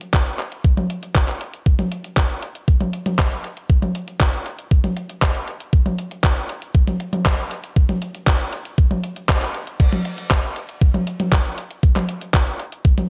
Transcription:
0.01 closed hi-hat medium
0.14 kick loud
0.14 clap loud
0.14 closed hi-hat medium
0.26 closed hi-hat soft
0.39 clap soft
0.39 closed hi-hat medium
0.52 closed hi-hat medium
0.64 kick loud
0.64 closed hi-hat medium
0.77 closed hi-hat soft
0.77 high tom medium
0.90 closed hi-hat medium
1.03 closed hi-hat medium
1.15 kick loud
1.15 clap loud
1.15 closed hi-hat medium
1.28 clap soft
1.28 closed hi-hat soft
1.41 closed hi-hat medium
1.54 closed hi-hat medium
1.66 kick loud
1.66 closed hi-hat medium
1.79 closed hi-hat soft
1.79 high tom medium
1.92 closed hi-hat medium
2.04 closed hi-hat medium
2.17 kick loud
2.17 clap loud
2.17 closed hi-hat medium
2.30 closed hi-hat soft
2.42 closed hi-hat medium
2.55 closed hi-hat medium
2.68 kick loud
2.68 closed hi-hat medium
2.81 closed hi-hat soft
2.81 high tom medium
2.93 closed hi-hat medium
3.06 closed hi-hat medium
3.06 high tom medium
3.19 kick loud
3.19 clap loud
3.19 closed hi-hat medium
3.31 closed hi-hat soft
3.44 closed hi-hat loud
3.57 closed hi-hat medium
3.70 kick loud
3.70 closed hi-hat medium
3.82 closed hi-hat soft
3.82 high tom medium
3.95 closed hi-hat loud
4.08 closed hi-hat medium
4.20 kick loud
4.20 clap loud
4.20 closed hi-hat medium
4.33 closed hi-hat soft
4.46 closed hi-hat medium
4.59 closed hi-hat medium
4.71 kick loud
4.71 closed hi-hat medium
4.84 closed hi-hat soft
4.84 high tom medium
4.97 closed hi-hat medium
5.09 closed hi-hat medium
5.22 kick loud
5.22 clap loud
5.22 closed hi-hat medium
5.35 closed hi-hat soft
5.48 closed hi-hat loud
5.60 closed hi-hat medium
5.73 kick loud
5.73 closed hi-hat medium
5.86 closed hi-hat soft
5.86 high tom medium
5.99 closed hi-hat medium
6.11 closed hi-hat medium
6.24 kick loud
6.24 clap loud
6.24 closed hi-hat medium
6.37 closed hi-hat soft
6.49 closed hi-hat medium
6.62 closed hi-hat medium
6.75 kick loud
6.75 closed hi-hat medium
6.87 closed hi-hat soft
6.87 high tom medium
7.00 closed hi-hat medium
7.13 closed hi-hat medium
7.13 high tom medium
7.26 kick loud
7.26 clap loud
7.26 closed hi-hat medium
7.38 closed hi-hat soft
7.51 closed hi-hat medium
7.64 closed hi-hat medium
7.76 kick loud
7.76 closed hi-hat soft
7.89 closed hi-hat soft
7.89 high tom medium
8.02 closed hi-hat medium
8.15 closed hi-hat medium
8.27 kick loud
8.27 clap loud
8.27 closed hi-hat medium
8.40 closed hi-hat soft
8.53 closed hi-hat medium
8.65 closed hi-hat medium
8.78 kick loud
8.78 closed hi-hat medium
8.91 closed hi-hat soft
8.91 high tom medium
9.04 closed hi-hat medium
9.16 closed hi-hat medium
9.29 kick loud
9.29 clap loud
9.29 closed hi-hat medium
9.42 clap soft
9.42 closed hi-hat soft
9.54 closed hi-hat medium
9.67 closed hi-hat medium
9.80 kick loud
9.80 closed hi-hat medium
9.80 crash loud
9.93 closed hi-hat soft
9.93 high tom medium
10.05 closed hi-hat loud
10.18 closed hi-hat medium
10.31 kick loud
10.31 clap loud
10.31 closed hi-hat medium
10.43 closed hi-hat soft
10.56 closed hi-hat loud
10.69 closed hi-hat medium
10.81 kick loud
10.81 closed hi-hat medium
10.94 closed hi-hat soft
10.94 high tom medium
11.07 closed hi-hat loud
11.20 closed hi-hat medium
11.20 high tom medium
11.32 kick loud
11.32 clap loud
11.32 closed hi-hat medium
11.45 closed hi-hat soft
11.58 closed hi-hat loud
11.71 closed hi-hat medium
11.83 kick loud
11.83 closed hi-hat medium
11.96 clap soft
11.96 closed hi-hat soft
11.96 high tom medium
12.09 closed hi-hat loud
12.21 closed hi-hat medium
12.34 kick loud
12.34 clap loud
12.34 closed hi-hat medium
12.47 closed hi-hat soft
12.59 closed hi-hat medium
12.72 closed hi-hat medium
12.85 kick loud
12.85 closed hi-hat medium
12.98 closed hi-hat soft
12.98 high tom medium

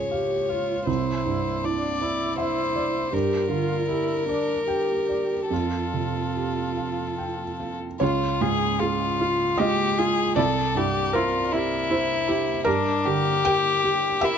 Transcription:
0.00 0.84 C#2 soft
0.00 0.90 G#2 soft
0.00 0.90 F4 soft
0.00 0.10 G#4 soft
0.00 0.34 C#5 soft
0.00 0.84 C#5 soft
0.11 0.51 G4 soft
0.11 0.72 F5 soft
0.49 0.88 F4 soft
0.49 0.88 C#5 soft
0.87 3.09 C2 soft
0.87 1.65 E4 soft
0.87 1.66 C5 soft
1.26 1.86 G2 soft
1.64 2.03 D4 soft
1.64 2.24 E4 soft
1.64 2.39 D5 soft
2.02 3.12 E4 soft
2.02 2.61 D5 soft
2.38 3.15 C5 medium
2.38 2.98 E5 soft
2.76 3.13 D5 soft
3.13 5.46 G2 soft
3.13 3.50 G4 medium
3.13 5.50 A#4 soft
3.49 4.11 D3 soft
3.49 3.88 F4 soft
3.89 4.27 E4 soft
3.89 4.52 G4 soft
4.29 4.67 D4 soft
4.29 4.93 D5 soft
4.68 5.53 G4 soft
4.68 5.33 G5 soft
5.09 5.51 D5 soft
5.50 7.97 F2 soft
5.50 7.81 F4 soft
5.50 7.76 A4 soft
5.93 6.61 C3 soft
6.37 7.02 G4 soft
6.77 7.43 F5 soft
7.18 7.85 G5 soft
7.60 8.01 F5 soft
8.00 10.33 C#2 medium
8.00 8.43 F4 medium
8.00 8.09 F4 medium
8.00 9.54 C#5 medium
8.41 9.04 G#2 soft
8.41 8.49 F4 medium
8.41 8.81 G#4 medium
8.80 9.60 F4 medium
8.80 8.90 F4 soft
8.80 9.43 G#4 soft
9.20 9.83 F4 soft
9.20 9.29 F4 medium
9.58 10.22 G#3 medium
9.58 9.68 F4 soft
9.58 10.00 G4 medium
9.58 10.32 D#5 medium
9.98 10.37 F4 soft
9.98 10.07 F4 medium
9.98 10.37 G#4 medium
10.36 12.61 C2 medium
10.36 10.45 E4 medium
10.36 10.79 A4 medium
10.36 11.09 D5 medium
10.75 11.37 G2 soft
10.75 10.85 E4 soft
10.75 11.17 G4 medium
11.13 11.23 E4 medium
11.13 11.54 F4 medium
11.13 11.86 A#4 medium
11.13 11.75 C5 medium
11.52 11.60 E4 medium
11.52 12.66 E4 medium
11.52 12.13 G4 medium
11.90 11.98 E4 medium
11.90 12.50 C5 medium
12.27 12.35 E4 medium
12.27 12.66 G4 medium
12.65 14.38 G2 medium
12.65 13.08 D4 medium
12.65 12.74 G4 medium
12.65 13.41 A#4 loud
13.05 13.69 D3 medium
13.05 13.13 G4 medium
13.05 14.26 G4 medium
13.45 13.54 G4 medium
13.45 14.07 A#4 medium
13.45 14.18 G5 loud
13.83 13.91 G4 medium
13.83 14.38 G4 medium
14.21 14.38 E4 medium
14.21 14.29 G4 medium
14.21 14.38 A#4 medium
14.21 14.38 E5 loud

